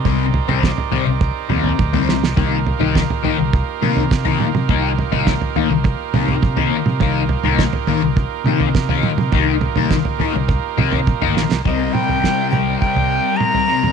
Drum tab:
SD |----o---------oo|----o-------o---|----o-----------|----o-------o---|
T2 |----------o-o---|----------o---oo|----------o-o--o|----------o---oo|
FT |o-oo-oo-o-oo-o--|o-oo-oo-o--o-o--|o-oo-oo-o-oo-o--|o-oo-oo-o--o-o--|
BD |o---o---o---o---|o---o---o---o---|o---o---o---o---|o---o---o---o---|

SD |----o---------oo|----o-----------|
T2 |----------o-o---|--o---o-----o--o|
FT |o-oo-oo-o-oo-o--|o--o--o--o---o--|
BD |o---o---o---o---|o---o---o-------|